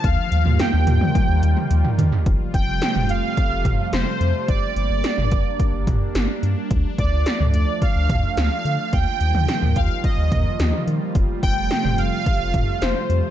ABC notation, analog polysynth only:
X:1
M:4/4
L:1/8
Q:1/4=108
K:Fmix
V:1 name="Analog polysynth"
f2 g4- g z | z g2 f3 c2 | d d4 z3 | z d2 d f2 f2 |
g3 f e3 z | z g2 f3 c2 |]